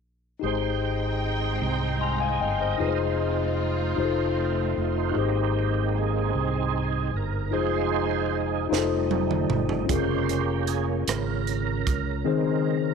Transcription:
0.40 1.57 G#2 soft
0.40 2.76 G#3 soft
0.40 2.74 D#4 soft
0.40 5.13 D#4 soft
0.40 2.75 G4 soft
0.40 1.98 C5 soft
0.44 1.58 G#1 medium
0.44 3.96 G#3 soft
0.44 2.78 C4 soft
0.44 2.76 D#4 soft
0.44 2.76 G#4 soft
0.44 1.99 C5 medium
0.44 2.76 G5 soft
0.44 2.78 G5 medium
1.62 2.37 C2 medium
2.01 2.21 F5 soft
2.01 2.19 G#5 soft
2.01 2.20 A#5 soft
2.01 2.20 C6 soft
2.20 2.40 D#5 soft
2.20 2.40 F5 soft
2.20 2.39 G#5 soft
2.20 2.40 G#5 soft
2.40 2.77 G1 medium
2.40 2.60 C5 soft
2.40 2.60 D#5 soft
2.40 2.60 F5 soft
2.40 2.59 G5 medium
2.61 2.98 A#4 soft
2.61 2.87 C5 soft
2.61 2.98 D#5 soft
2.61 2.99 D#5 soft
2.78 3.94 F1 medium
2.78 2.87 G3 soft
2.78 3.95 D#4 soft
2.78 3.99 D#4 soft
2.78 3.96 F4 soft
2.78 3.99 F4 soft
2.78 5.15 F4 medium
2.78 3.98 G#4 soft
2.78 2.88 B4 soft
2.78 3.99 C5 medium
2.82 3.97 C4 soft
2.88 4.02 G#3 medium
2.88 3.99 C5 medium
3.96 4.73 F1 medium
3.96 5.15 A3 soft
3.96 5.16 C4 medium
3.96 5.10 D#4 medium
3.96 5.16 F4 medium
3.96 4.05 G4 soft
3.96 5.17 C5 medium
3.96 5.18 C5 medium
4.00 5.18 A3 medium
4.00 5.17 D#4 medium
4.00 5.18 F4 soft
4.05 5.20 A4 medium
4.77 5.14 F1 medium
5.09 7.47 D#4 soft
5.09 5.17 F#4 soft
5.14 6.31 G#1 medium
5.14 6.30 G#2 soft
5.14 6.31 G#3 soft
5.14 7.48 G4 soft
5.14 7.49 G#4 soft
5.18 6.32 A#3 soft
5.18 5.97 C4 soft
5.18 5.97 D#4 soft
5.18 5.99 G4 medium
5.18 7.50 C5 soft
5.97 7.11 C4 soft
5.97 7.11 D#4 soft
5.97 7.18 G#4 medium
6.35 7.10 C2 medium
7.14 7.53 G1 medium
7.14 7.56 A#4 medium
7.51 8.68 F1 medium
7.51 8.67 F3 soft
7.51 8.67 G#3 soft
7.51 8.68 D#4 soft
7.51 8.68 D#4 medium
7.51 8.69 F4 soft
7.51 8.67 G#4 medium
7.51 8.71 G#4 soft
7.51 8.38 C5 medium
7.51 8.71 C5 medium
8.69 9.46 F1 medium
8.69 9.86 G3 soft
8.69 9.86 A3 soft
8.69 9.88 D#4 medium
8.69 9.86 D#4 soft
8.69 9.87 F4 medium
8.69 8.78 G#4 soft
8.69 9.90 C5 medium
8.69 snare soft
8.78 9.93 A4 medium
9.11 high tom medium
9.31 mid tom medium
9.50 9.86 G1 medium
9.50 mid tom medium
9.69 floor tom medium
9.85 11.03 F1 medium
9.85 10.42 C#3 soft
9.85 10.42 G#3 soft
9.85 12.19 C#4 medium
9.85 12.21 F4 soft
9.85 10.70 G4 medium
9.85 kick medium
9.85 closed hi-hat medium
9.90 11.04 A#3 medium
9.90 11.04 C#4 soft
9.90 12.21 G#4 soft
9.90 12.23 A#4 medium
9.90 10.42 C5 soft
10.29 closed hi-hat soft
10.67 10.86 G#4 medium
10.67 closed hi-hat soft
11.08 11.82 G#1 medium
11.08 12.94 C#3 medium
11.08 12.94 A#4 medium
11.08 cross-stick medium
11.08 closed hi-hat medium
11.47 closed hi-hat soft
11.87 12.23 C#2 medium
11.87 kick medium
11.87 closed hi-hat soft
12.25 12.77 D#3 soft
12.25 12.94 D#3 medium
12.25 12.78 G#3 soft
12.25 12.94 C4 medium
12.25 12.78 C4 soft
12.25 12.94 D#4 medium
12.25 12.94 G#4 medium
12.25 12.94 C5 medium

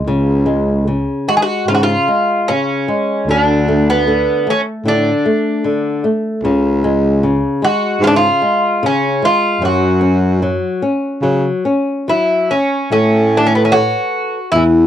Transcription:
0.05 1.11 C#2 medium
0.05 0.86 C#3 medium
0.46 0.86 G#3 soft
0.87 1.27 C#3 soft
1.28 1.67 G#3 soft
1.28 1.35 F#4 medium
1.37 1.42 G#4 medium
1.42 1.68 F#4 medium
1.68 1.94 G#2 medium
1.68 2.08 C#3 soft
1.68 1.74 F4 medium
1.75 1.82 F#4 medium
1.83 2.52 F4 medium
2.08 2.48 G#3 soft
2.48 2.88 C#3 soft
2.48 3.30 C#4 medium
2.88 3.27 G#3 soft
3.27 4.30 D2 medium
3.27 4.06 D3 medium
3.27 3.89 D4 medium
3.68 4.07 A3 medium
3.90 4.50 B3 medium
4.08 4.46 D3 soft
4.47 4.85 A3 soft
4.47 4.60 C#4 medium
4.85 5.11 A2 medium
4.85 5.24 D3 soft
4.85 6.01 D4 medium
5.25 5.64 A3 soft
5.64 6.03 D3 soft
6.04 6.43 A3 soft
6.43 7.46 C#2 medium
6.43 7.22 C#3 medium
6.84 7.22 G#3 medium
7.23 7.61 C#3 soft
7.62 8.01 G#3 medium
7.62 8.03 F#4 medium
8.00 8.27 G#2 medium
8.00 8.41 C#3 soft
8.00 8.07 F4 medium
8.07 8.15 D4 medium
8.16 8.84 F4 medium
8.42 8.81 G#3 medium
8.83 9.21 C#3 medium
8.83 9.25 C#4 medium
9.22 9.60 G#3 soft
9.22 9.64 F4 medium
9.61 10.65 F#2 medium
9.61 10.41 F#3 medium
9.65 12.05 F#4 medium
10.01 10.40 C#4 soft
10.42 10.81 F#3 soft
10.82 11.22 C#4 soft
11.22 11.49 C#3 medium
11.22 11.63 F#3 soft
11.65 12.06 C#4 soft
12.08 12.49 F#3 soft
12.08 12.53 E4 medium
12.51 12.89 C#4 medium
12.51 12.91 C#4 soft
12.91 13.97 A2 medium
12.91 13.71 A3 medium
12.91 13.38 C#4 medium
13.37 13.46 D4 medium
13.47 13.55 C#4 medium
13.55 13.64 B3 medium
13.65 13.74 C#4 medium
13.72 14.49 F#4 medium
13.72 14.38 A4 soft
13.72 14.38 B4 soft
13.72 14.38 C#5 soft
14.52 14.87 E2 medium
14.52 14.87 E3 medium
14.52 14.63 E4 medium

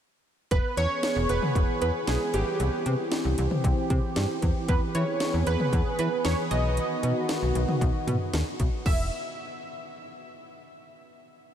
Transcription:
0.51 0.61 E1 loud
0.51 6.47 E3 medium
0.51 2.58 B3 medium
0.51 2.58 G#4 medium
0.51 0.78 B4 loud
0.51 kick loud
0.51 closed hi-hat medium
0.77 0.87 E2 loud
0.77 1.31 C#5 loud
0.77 closed hi-hat medium
1.03 snare loud
1.03 closed hi-hat medium
1.16 1.26 E1 loud
1.29 1.39 E1 loud
1.29 1.78 B4 loud
1.29 closed hi-hat medium
1.42 mid tom medium
1.55 1.65 E1 loud
1.55 kick medium
1.55 closed hi-hat medium
1.82 1.91 E2 loud
1.82 1.93 B4 loud
1.82 closed hi-hat medium
2.07 2.17 B1 medium
2.07 2.35 G#4 medium
2.07 snare loud
2.07 closed hi-hat medium
2.34 2.43 G#1 medium
2.34 3.08 G4 medium
2.34 closed hi-hat medium
2.60 2.69 C2 loud
2.60 4.66 C4 medium
2.60 4.66 G4 medium
2.60 closed hi-hat medium
2.86 2.95 C3 loud
2.86 closed hi-hat medium
3.12 snare loud
3.12 closed hi-hat medium
3.25 3.34 C2 medium
3.38 3.48 C2 loud
3.38 closed hi-hat medium
3.51 mid tom medium
3.64 3.74 C2 loud
3.64 kick medium
3.64 closed hi-hat medium
3.90 4.00 C3 medium
3.90 kick medium
3.90 closed hi-hat medium
4.16 4.26 G2 medium
4.16 snare loud
4.16 closed hi-hat medium
4.42 4.52 E2 medium
4.42 kick medium
4.42 closed hi-hat medium
4.68 4.78 E2 loud
4.68 6.49 B3 medium
4.68 6.49 G#4 medium
4.68 4.81 B4 medium
4.68 kick loud
4.68 closed hi-hat medium
4.95 5.04 E3 loud
4.95 5.48 C#5 loud
4.95 closed hi-hat medium
5.20 snare loud
5.20 closed hi-hat medium
5.34 5.43 E2 medium
5.47 5.56 E2 medium
5.47 5.98 B4 loud
5.47 closed hi-hat medium
5.60 mid tom medium
5.73 5.82 E2 loud
5.73 kick medium
5.73 closed hi-hat medium
5.99 6.08 E3 loud
5.99 6.23 B4 medium
5.99 closed hi-hat medium
6.25 6.35 E2 loud
6.25 6.37 C#5 loud
6.25 snare loud
6.25 closed hi-hat medium
6.51 6.79 B1 loud
6.51 8.83 D#3 medium
6.51 8.83 B3 medium
6.51 8.83 F#4 medium
6.51 7.25 D#5 loud
6.51 closed hi-hat medium
6.77 closed hi-hat medium
7.03 7.13 B2 medium
7.03 closed hi-hat medium
7.29 snare loud
7.29 closed hi-hat medium
7.42 7.52 B1 medium
7.55 7.65 B1 medium
7.55 closed hi-hat medium
7.68 mid tom medium
7.81 7.91 B1 loud
7.81 kick medium
7.81 closed hi-hat medium
8.07 8.17 B2 loud
8.07 closed hi-hat medium
8.07 mid tom medium
8.33 8.43 D#2 medium
8.33 snare loud
8.33 closed hi-hat medium
8.60 8.69 B1 medium
8.60 kick medium
8.60 closed hi-hat medium
8.86 9.10 E1 loud
8.86 9.10 E5 medium
8.86 kick loud
8.86 crash medium

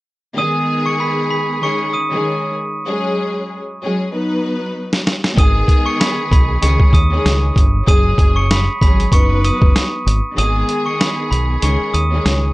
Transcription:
0.35 1.60 D#3 loud
0.35 1.61 G#3 medium
0.35 1.62 B3 medium
0.35 1.62 G#4 loud
0.35 0.83 D#6 loud
0.35 0.84 D#7 medium
0.86 0.99 C#6 medium
0.86 0.99 C#7 medium
1.00 1.28 B5 medium
1.00 1.29 B6 medium
1.30 1.59 B5 medium
1.30 1.59 B6 medium
1.62 1.91 D#3 medium
1.62 1.91 G#3 medium
1.62 1.91 C#4 medium
1.62 1.92 G#4 loud
1.62 1.91 C#6 medium
1.62 1.91 C#7 medium
1.93 2.39 D#6 medium
1.93 2.39 D#7 medium
2.11 2.53 D#3 loud
2.11 2.53 G#3 medium
2.11 2.54 C#4 medium
2.11 2.54 G#4 loud
2.85 3.59 F#3 medium
2.85 3.59 G#3 medium
2.85 3.60 C#4 medium
2.85 3.60 G#4 loud
3.83 4.10 F#3 medium
3.83 4.11 G#3 medium
3.83 4.11 C#4 medium
3.83 4.12 G#4 loud
4.11 4.99 F#3 medium
4.11 4.99 B3 medium
4.11 4.99 D#4 medium
4.11 5.00 B4 loud
4.93 snare medium
5.07 snare medium
5.24 snare medium
5.35 5.62 G#1 medium
5.35 6.60 D#3 loud
5.35 6.61 G#3 medium
5.35 6.62 B3 medium
5.35 6.62 G#4 loud
5.35 5.83 D#6 medium
5.35 kick loud
5.35 closed hi-hat medium
5.39 5.84 D#7 medium
5.68 kick medium
5.68 closed hi-hat medium
5.86 5.98 C#6 medium
5.86 5.99 C#7 medium
6.00 6.28 B5 medium
6.00 6.29 B6 medium
6.00 snare loud
6.00 closed hi-hat medium
6.32 6.56 B1 medium
6.32 6.60 B5 medium
6.32 6.60 B6 medium
6.32 kick medium
6.32 closed hi-hat medium
6.62 6.76 C#2 loud
6.62 6.91 D#3 medium
6.62 6.91 G#3 medium
6.62 6.92 C#4 medium
6.62 6.92 G#4 loud
6.62 6.91 C#6 medium
6.62 6.91 C#7 medium
6.62 closed hi-hat medium
6.80 kick medium
6.93 7.18 D#2 medium
6.93 7.39 D#6 medium
6.93 7.40 D#7 medium
6.93 kick medium
6.93 closed hi-hat medium
7.11 7.53 D#3 loud
7.11 7.53 G#3 medium
7.11 7.54 C#4 medium
7.11 7.54 G#4 loud
7.25 7.50 C#2 medium
7.25 snare loud
7.25 closed hi-hat medium
7.56 7.81 G1 medium
7.56 kick medium
7.56 closed hi-hat medium
7.85 8.12 F#1 loud
7.85 8.59 F#3 medium
7.85 8.59 G#3 medium
7.85 8.60 C#4 medium
7.85 8.60 G#4 loud
7.85 8.33 D#6 loud
7.85 8.33 D#7 medium
7.85 kick loud
7.85 closed hi-hat medium
8.18 8.67 F#1 medium
8.18 kick medium
8.18 closed hi-hat medium
8.36 8.49 C#6 medium
8.36 8.49 C#7 medium
8.51 8.79 B5 medium
8.51 8.79 B6 medium
8.51 snare loud
8.51 closed hi-hat medium
8.81 9.06 G#1 medium
8.81 9.10 F#3 medium
8.81 9.11 G#3 medium
8.81 9.12 C#4 medium
8.81 9.12 G#4 medium
8.81 9.09 B5 medium
8.81 9.10 B6 medium
8.81 kick medium
8.81 closed hi-hat medium
9.00 closed hi-hat soft
9.12 9.50 F#1 loud
9.12 9.99 F#3 medium
9.12 9.99 B3 medium
9.12 9.99 D#4 medium
9.12 10.00 B4 loud
9.12 9.41 C#6 medium
9.12 9.41 C#7 medium
9.12 kick medium
9.12 closed hi-hat medium
9.44 9.90 D#6 medium
9.44 9.90 D#7 medium
9.44 closed hi-hat medium
9.62 9.72 F#1 medium
9.62 kick medium
9.76 snare loud
9.76 closed hi-hat medium
10.06 10.20 G#1 medium
10.06 closed hi-hat medium
10.35 10.62 G#1 loud
10.35 11.60 D#3 loud
10.35 11.61 G#3 medium
10.35 11.62 B3 medium
10.35 11.62 G#4 loud
10.35 10.83 D#6 loud
10.35 10.84 D#7 medium
10.35 closed hi-hat medium
10.69 closed hi-hat medium
10.86 10.99 C#6 medium
10.86 10.99 C#7 medium
11.00 11.28 B5 medium
11.00 11.29 B6 medium
11.00 snare loud
11.00 closed hi-hat medium
11.31 11.56 B1 medium
11.31 11.59 B5 medium
11.31 11.60 B6 medium
11.31 closed hi-hat medium
11.61 11.76 C#2 loud
11.61 11.91 D#3 medium
11.61 11.91 G#3 medium
11.61 11.91 C#4 medium
11.61 11.92 G#4 loud
11.61 11.91 C#6 medium
11.61 11.91 C#7 medium
11.61 closed hi-hat loud
11.94 12.18 D#2 medium
11.94 12.39 D#6 medium
11.94 12.39 D#7 medium
11.94 closed hi-hat medium
12.11 12.53 D#3 loud
12.11 12.53 G#3 medium
12.11 12.53 C#4 medium
12.11 12.53 G#4 loud
12.25 12.50 C#2 loud
12.25 snare loud
12.25 closed hi-hat medium

